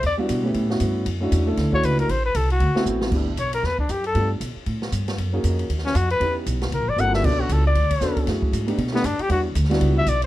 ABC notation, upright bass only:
X:1
M:4/4
L:1/8
Q:"Swing" 1/4=233
K:Glyd
V:1 name="Upright bass" clef=bass
E,,2 B,,2 A,,2 G,,2 | F,,2 E,,2 D,,2 C,,2 | A,,,2 =C,,2 D,, z A,,,2 | G,,,2 B,,,2 E,,2 F,,2 |
G,,2 B,, z A,,2 G,,2 | F,,2 =F,,2 ^D,,2 F,,2 | E,,2 B,,,2 (3=C,, _B,,, G,,, G,,,2 | B,,,2 C,,2 D,,2 E,,2 |
F,,2 ^G,,2 B,,2 =G,, z | E,,2 D,,2 C,,2 B,,,2 |]